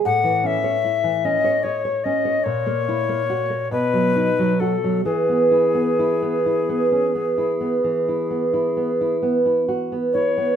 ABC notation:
X:1
M:12/8
L:1/16
Q:3/8=44
K:E
V:1 name="Recorder"
f2 e4 d2 c2 d2 c6 B4 A2 | G16- G2 z4 c2 |]
V:2 name="Nylon-string guitar"
A,, E, C c E E, C c d c C c ^A,, ^A, E A, F A, B,, F, D F, F F, | E, B, E B, E B, E B, C B, E B, E, E B, E B, E B, E F B, E B, |]